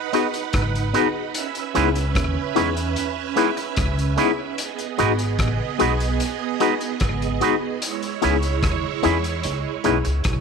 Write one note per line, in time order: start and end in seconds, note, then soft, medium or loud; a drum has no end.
0.00 1.31 D#4 medium
0.00 1.31 B4 medium
0.00 1.31 F#5 loud
0.13 0.26 B3 medium
0.13 0.27 B3 loud
0.13 0.26 D#4 medium
0.13 0.27 D#4 medium
0.13 0.26 F#4 medium
0.13 0.27 F#4 medium
0.13 0.27 G#4 medium
0.13 0.27 B4 medium
0.13 closed hi-hat medium
0.34 closed hi-hat medium
0.53 0.91 G#1 loud
0.53 kick loud
0.53 cross-stick loud
0.53 closed hi-hat medium
0.75 closed hi-hat medium
0.94 1.07 B3 medium
0.94 1.07 D#4 medium
0.94 1.08 F#4 medium
0.94 1.07 F#4 medium
0.94 1.08 G#4 loud
0.94 1.07 B4 loud
0.94 closed hi-hat medium
1.15 1.23 F#4 soft
1.15 1.23 G#4 soft
1.34 4.54 C#4 loud
1.34 4.54 B4 medium
1.34 4.54 E5 loud
1.34 closed hi-hat loud
1.55 closed hi-hat medium
1.75 2.13 C#2 loud
1.75 1.87 G#3 loud
1.75 1.88 B3 loud
1.75 1.88 C#4 medium
1.75 1.88 D#4 medium
1.75 1.89 E4 medium
1.75 1.88 E4 loud
1.75 1.89 G#4 loud
1.75 1.88 B4 loud
1.75 closed hi-hat medium
1.95 closed hi-hat medium
2.15 2.35 D#2 medium
2.15 kick loud
2.15 cross-stick loud
2.15 closed hi-hat medium
2.55 2.94 E2 medium
2.55 2.68 G#3 medium
2.55 2.69 B3 loud
2.55 2.69 C#4 medium
2.55 2.69 D#4 medium
2.55 2.69 E4 medium
2.55 2.69 G#4 loud
2.55 2.69 B4 medium
2.55 closed hi-hat medium
2.77 closed hi-hat medium
2.96 closed hi-hat medium
3.36 3.49 G#3 loud
3.36 3.50 B3 loud
3.36 3.49 C#4 medium
3.36 3.50 D#4 medium
3.36 3.50 E4 medium
3.36 3.50 E4 loud
3.36 3.50 G#4 loud
3.36 3.50 B4 medium
3.36 closed hi-hat medium
3.57 muted clean electric guitar stroke soft
3.57 closed hi-hat medium
3.76 4.15 C#2 loud
3.76 kick loud
3.76 cross-stick loud
3.76 closed hi-hat medium
3.99 closed hi-hat medium
4.17 4.30 G#3 loud
4.17 4.31 B3 loud
4.17 4.30 C#4 loud
4.17 4.31 D#4 medium
4.17 4.31 E4 medium
4.17 4.31 E4 loud
4.17 4.31 G#4 loud
4.17 4.31 B4 loud
4.17 closed hi-hat medium
4.58 7.78 B3 medium
4.58 7.78 G#4 medium
4.58 7.78 D#5 loud
4.58 closed hi-hat loud
4.79 closed hi-hat medium
4.98 5.37 G#1 loud
4.98 5.11 G#3 medium
4.98 5.12 B3 medium
4.98 5.12 D#4 medium
4.98 5.11 D#4 loud
4.98 5.12 F#4 medium
4.98 5.12 G#4 loud
4.98 5.12 B4 medium
4.98 closed hi-hat medium
5.19 closed hi-hat medium
5.39 5.58 A1 medium
5.39 kick loud
5.39 cross-stick loud
5.39 closed hi-hat medium
5.79 6.18 B1 medium
5.79 5.92 G#3 medium
5.79 5.93 B3 loud
5.79 5.93 D#4 medium
5.79 5.92 D#4 medium
5.79 5.93 F#4 medium
5.79 5.93 G#4 loud
5.79 5.93 B4 loud
5.79 closed hi-hat medium
6.00 closed hi-hat medium
6.20 closed hi-hat medium
6.60 6.73 G#3 medium
6.60 6.74 B3 medium
6.60 6.74 D#4 medium
6.60 6.73 D#4 loud
6.60 6.74 F#4 medium
6.60 6.74 G#4 loud
6.60 6.74 B4 medium
6.60 closed hi-hat medium
6.81 closed hi-hat medium
7.00 7.39 G#1 loud
7.00 kick loud
7.00 cross-stick loud
7.00 closed hi-hat medium
7.22 closed hi-hat medium
7.41 7.54 G#3 medium
7.41 7.54 B3 medium
7.41 7.55 D#4 medium
7.41 7.54 D#4 medium
7.41 7.55 F#4 medium
7.41 7.55 G#4 loud
7.41 7.55 B4 medium
7.41 closed hi-hat medium
7.62 7.70 F#4 soft
7.62 7.70 G#4 soft
7.82 10.41 G#3 medium
7.82 10.41 E4 medium
7.82 10.41 C#5 loud
7.82 closed hi-hat loud
8.03 closed hi-hat medium
8.22 8.61 C#2 loud
8.22 8.35 G#3 medium
8.22 8.35 B3 loud
8.22 8.35 C#4 medium
8.22 8.36 D#4 medium
8.22 8.36 E4 medium
8.22 8.36 G#4 loud
8.22 8.36 B4 medium
8.22 closed hi-hat medium
8.43 closed hi-hat medium
8.63 8.82 D#2 medium
8.63 kick loud
8.63 cross-stick loud
8.63 closed hi-hat medium
9.03 9.42 E2 medium
9.03 9.16 G#3 medium
9.03 9.16 B3 medium
9.03 9.16 C#4 medium
9.03 9.17 D#4 medium
9.03 9.17 E4 medium
9.03 9.17 G#4 loud
9.03 9.17 B4 medium
9.03 closed hi-hat medium
9.24 closed hi-hat medium
9.43 9.64 C#2 loud
9.43 closed hi-hat medium
9.84 10.04 B1 medium
9.84 9.97 G#3 medium
9.84 9.98 B3 medium
9.84 9.97 C#4 medium
9.84 9.98 D#4 medium
9.84 9.98 E4 medium
9.84 9.97 E4 medium
9.84 9.98 G#4 medium
9.84 9.98 B4 medium
9.84 closed hi-hat medium
10.05 10.24 C#2 medium
10.05 muted clean electric guitar stroke soft
10.05 closed hi-hat medium
10.24 10.41 B1 medium
10.24 kick loud
10.24 cross-stick loud
10.24 closed hi-hat medium